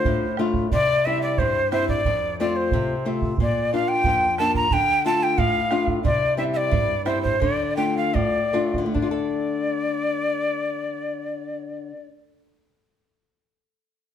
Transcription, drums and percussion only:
0.05 bombo low
0.37 bombo rim
0.54 bombo low
0.72 bombo low
1.38 bombo low
1.72 bombo rim
1.89 bombo low
2.05 bombo low
2.72 bombo low
3.22 bombo low
3.38 bombo low
4.04 bombo low
4.38 bombo rim
4.55 bombo low
4.71 bombo low
5.38 bombo low
5.71 bombo rim
5.87 bombo low
6.05 bombo low
6.72 bombo low
7.06 bombo rim
7.25 bombo low
7.42 bombo low
8.15 bombo low
8.74 bombo low
8.95 bombo low

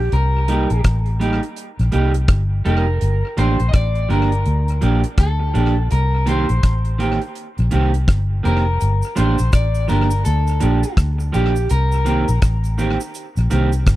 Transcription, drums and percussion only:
0.12 closed hi-hat
0.48 closed hi-hat
0.70 closed hi-hat
0.84 kick, cross-stick, closed hi-hat
1.06 closed hi-hat
1.21 closed hi-hat
1.43 closed hi-hat
1.56 closed hi-hat
1.79 closed hi-hat
1.92 closed hi-hat
2.14 closed hi-hat
2.28 kick, cross-stick, closed hi-hat
2.65 closed hi-hat
3.01 closed hi-hat
3.38 closed hi-hat
3.59 closed hi-hat
3.73 kick, cross-stick, closed hi-hat
3.95 closed hi-hat
4.10 closed hi-hat
4.32 closed hi-hat
4.46 closed hi-hat
4.68 closed hi-hat
4.82 closed hi-hat
5.04 closed hi-hat
5.18 kick, cross-stick, closed hi-hat
5.55 closed hi-hat
5.91 closed hi-hat
6.27 closed hi-hat
6.49 closed hi-hat
6.63 kick, cross-stick, closed hi-hat
6.85 closed hi-hat
7.00 closed hi-hat
7.22 closed hi-hat
7.35 closed hi-hat
7.58 closed hi-hat
7.71 closed hi-hat
7.94 closed hi-hat
8.08 kick, cross-stick, closed hi-hat
8.45 closed hi-hat
8.81 closed hi-hat, cabasa
9.02 cabasa
9.16 closed hi-hat, cabasa
9.38 closed hi-hat, cabasa
9.53 kick, cross-stick, closed hi-hat, cabasa
9.75 closed hi-hat, cabasa
9.89 closed hi-hat, cabasa
10.11 closed hi-hat, cabasa
10.25 closed hi-hat, cabasa
10.47 closed hi-hat, cabasa
10.60 closed hi-hat, cabasa
10.83 closed hi-hat, cabasa
10.97 kick, cross-stick, closed hi-hat, cabasa
11.20 cabasa
11.34 closed hi-hat, cabasa
11.56 cabasa
11.69 closed hi-hat, cabasa
11.92 cabasa
12.06 closed hi-hat, cabasa
12.28 closed hi-hat, cabasa
12.42 kick, cross-stick, closed hi-hat, cabasa
12.64 closed hi-hat, cabasa
12.79 closed hi-hat, cabasa
13.00 closed hi-hat, cabasa
13.14 closed hi-hat, cabasa
13.37 closed hi-hat, cabasa
13.51 closed hi-hat, cabasa
13.72 closed hi-hat, cabasa
13.87 kick, cross-stick, closed hi-hat, cabasa

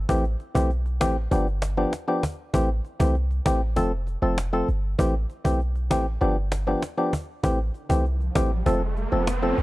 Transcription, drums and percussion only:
0.09 cajon bass
0.24 cajon slap
0.40 cajon slap
0.55 cajon bass
0.70 cajon slap
0.86 cajon slap
1.01 cajon bass, cajon slap
1.32 cajon bass
1.47 cajon slap
1.62 cajon slap
1.93 cajon slap
2.23 cajon bass
2.54 cajon bass
2.85 cajon slap
3.00 cajon bass
3.15 cajon slap
3.31 cajon slap
3.46 cajon bass, cajon slap
3.77 cajon bass
4.07 cajon slap
4.38 cajon slap
4.53 cajon slap
4.68 cajon slap
4.99 cajon bass
5.30 cajon slap
5.45 cajon bass
5.60 cajon slap
5.75 cajon slap
5.91 cajon bass, cajon slap
6.21 cajon slap
6.52 cajon slap
6.83 cajon slap
6.98 cajon slap
7.13 cajon bass
7.44 cajon bass
7.74 cajon slap
7.90 cajon bass
8.05 cajon slap
8.20 cajon slap
8.35 cajon bass, cajon slap
8.66 cajon bass
8.97 cajon slap
9.27 cajon slap
9.43 cajon slap
9.58 cajon slap

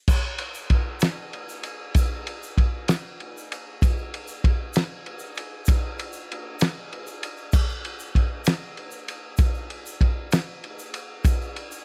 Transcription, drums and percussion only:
0.08 kick, crash, shaker
0.38 ride
0.55 shaker
0.70 kick, ride
1.00 snare, ride, shaker
1.33 ride
1.49 shaker
1.63 ride, shaker
1.94 kick, ride, shaker
2.27 ride
2.43 shaker
2.58 kick, ride
2.88 snare, ride, shaker
3.20 ride
3.37 shaker
3.52 ride, shaker
3.82 kick, ride, shaker
3.97 shaker
4.14 ride
4.28 shaker
4.44 kick, ride
4.74 snare, ride, shaker
5.06 ride
5.19 shaker
5.35 ride, shaker
5.66 kick, ride, shaker
5.98 ride, shaker
6.13 shaker
6.32 ride
6.60 snare, ride, shaker
6.93 ride
7.07 shaker
7.23 ride, shaker
7.37 shaker
7.53 kick, crash, shaker
7.69 shaker
7.85 ride
8.00 shaker
8.15 kick, ride
8.45 snare, ride, shaker
8.77 ride
8.91 shaker
9.08 ride, shaker
9.37 kick, ride, shaker
9.54 shaker
9.70 ride
9.86 shaker
10.01 kick, ride
10.32 snare, ride, shaker
10.64 ride
10.79 shaker
10.94 ride, shaker
11.25 kick, ride, shaker
11.42 shaker
11.56 ride
11.72 shaker

